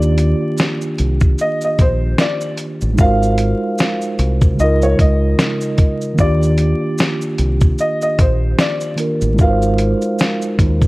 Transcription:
Already playing: D#2 D#3 A#3 D4 F4 G4 D5
0.02 shaker
0.18 closed hi-hat, shaker
0.58 snare, shaker
0.81 shaker
0.98 C2, closed hi-hat, shaker
1.20 kick, shaker
1.38 D#5, shaker
1.61 D#5, shaker
1.79 A#1 C5, kick, closed hi-hat, shaker
2.18 D5, snare, shaker
2.41 shaker
2.57 closed hi-hat, shaker
2.81 A1, shaker
2.93 G#3 D#4
2.98 G#1 F4 F#4 A#4 F5, kick, shaker
3.03 C5
3.23 shaker
3.38 closed hi-hat, shaker
3.78 snare, shaker
4.01 shaker
4.19 C2, closed hi-hat, shaker
4.41 kick, shaker
4.54 C#3 G#3
4.59 C#2 D#4 F4 D#5, shaker
4.64 A#4
4.82 C#5, shaker
4.99 C#2 D#5, kick, closed hi-hat, shaker
5.39 snare, shaker
5.61 shaker
5.78 kick, closed hi-hat, shaker
6.01 shaker
6.13 D#3 A#3
6.18 D#2 D4 F4 D5, kick, shaker
6.23 G4
6.43 shaker
6.58 closed hi-hat, shaker
6.98 snare, shaker
7.21 shaker
7.38 C2, closed hi-hat, shaker
7.61 kick, shaker
7.78 D#5, shaker
8.02 D#5, shaker
8.19 A#1 C5, kick, closed hi-hat, shaker
8.59 D5, snare, shaker
8.81 shaker
8.96 D#3 A#3 D4 F4, closed hi-hat, shaker
9.00 A#4
9.21 A1, shaker
9.34 G#3 D#4 F4
9.38 G#1 F#4 A#4 F5, kick, shaker
9.44 B4
9.50 C5
9.62 shaker
9.78 closed hi-hat, shaker
10.02 shaker
10.19 snare, shaker
10.42 shaker
10.59 D#2, kick, closed hi-hat, shaker
10.82 kick, shaker

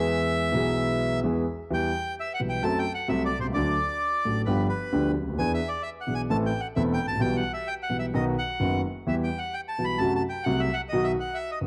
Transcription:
Already playing: E2 E3 G#3 B3 G#4 E5
0.52 B1 B2 E3 G#3 B3
0.56 G#4
1.24 E2 E3 G#3 B3 G#4
1.70 E2 E3 G3 B3 G4 G5
2.20 E5
2.34 F#5
2.40 B1 B2 E3 G3 B3 G4
2.49 G5
2.63 F#2 F#3 A3 C4 A4 A5
2.79 G5
2.94 F#5
3.08 C2 C3 F#3 A3 C4 A4 E5
3.25 D5
3.39 B1 C5
3.44 C2
3.50 C#2
3.54 D2 D3 F#3 A3 D4 A4 D5
4.25 A1 A2 F#3 A3 D4 A4
4.46 G1 G2 F3 B3 D4 G4 B4
4.69 B4
4.92 D2 D3 F3 B3 D4 G4
5.21 C#2
5.28 D2
5.33 D#2
5.38 E2 E3 B3 D4 G#4 G#5
5.54 E5
5.69 D5
5.83 E5
6.01 F#5
6.07 B1 B2 E3 B3 D4 G#4
6.15 G#5
6.30 A1 A2 E3 A3 C4 A4 A5
6.46 G5
6.60 F#5
6.76 E1 E2 E3 A3 C4 A4 E5
6.94 G5
7.05 G#1 A5
7.10 A1
7.15 A#1
7.20 B1 B2 E3 G3 B3 G4 G5
7.36 F#5
7.54 E5
7.68 G5
7.83 F#5
7.89 B1 B2 E3 G3 B3 G4
7.99 E5
8.14 B1 B2 D#3 F#3 B3 F#4 D#5
8.38 F#5
8.60 F#1 F#2 D#3 F#3 B3 F#4
9.07 E2 E3 G3 B3 G4 E5
9.24 G5
9.38 F#5
9.54 G5
9.68 A5
9.78 B1 B2 E3 G3 B3 G4
9.84 B5
9.98 F#2 C3 F#3 A3 F#4 A5
10.16 A5
10.29 G5
10.44 C2 C3 F#3 A3 F#4 F#5
10.60 E5
10.73 F#5
10.89 B1 B2 F#3 F#4 D#5
10.93 D#3 B3
11.04 E5
11.20 F#5
11.34 E5
11.51 D#5
11.61 F#1 F#2 D#3 F#3 B3 F#4

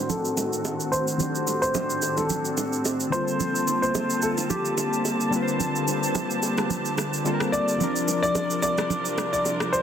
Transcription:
Already playing: A2 D#3 C4 D4 F#4 C5
0.09 A4, low conga, shaker
0.25 shaker
0.37 high bongo, low bongo, shaker
0.53 shaker
0.65 high bongo, shaker
0.80 shaker
0.92 C5, shaker
1.08 shaker
1.18 D#3 C4 D4, low conga, shaker
1.23 G4
1.30 A4
1.35 shaker
1.47 low bongo, shaker
1.62 C5, shaker
1.75 high bongo, low bongo, low conga, shaker
1.90 shaker
2.02 high bongo, shaker
2.17 A4, low bongo, shaker
2.30 low conga, shaker
2.45 shaker
2.57 high bongo, low bongo, shaker
2.73 shaker
2.85 high bongo, shaker
3.00 shaker
3.10 D3 G3 A#3 C4 F4 C5 A5, shaker
3.14 F4 A4
3.28 shaker
3.40 low conga, shaker
3.56 shaker
3.68 low bongo, shaker
3.82 C5, shaker
3.95 high bongo, low bongo, low conga, shaker
4.10 shaker
4.22 A4, high bongo, shaker
4.38 low bongo, shaker
4.50 G4, low conga, shaker
4.65 shaker
4.78 high bongo, low bongo, shaker
4.93 shaker
5.05 high bongo, shaker
5.20 shaker
5.30 D3 G3 A#3 C4 G4, shaker
5.35 F4 B4
5.42 C5
5.48 shaker
5.60 low conga, shaker
5.76 shaker
5.88 low bongo, shaker
6.03 shaker
6.15 high bongo, low bongo, low conga, shaker
6.30 shaker
6.43 high bongo, shaker
6.58 cross-stick, low bongo, shaker
6.70 low conga, shaker
6.85 shaker
6.98 cross-stick, high bongo, low bongo, shaker
7.13 shaker
7.24 D3 G3 A#3 C4 F4 A4, high bongo, shaker
7.34 A#4
7.40 cross-stick, shaker
7.52 D5, shaker
7.68 shaker
7.78 C2 C3 F3 C4 D4 F4 A#4, low conga, shaker
7.83 A#4
7.96 shaker
8.08 low bongo, shaker
8.23 D5, shaker
8.35 high bongo, low bongo, low conga, shaker
8.51 shaker
8.62 D5, high bongo, shaker
8.78 cross-stick, low bongo, shaker
8.90 low conga, shaker
9.05 shaker
9.18 cross-stick, high bongo, low bongo, shaker
9.33 D5, shaker
9.45 high bongo, shaker
9.60 cross-stick, shaker
9.73 C5, shaker

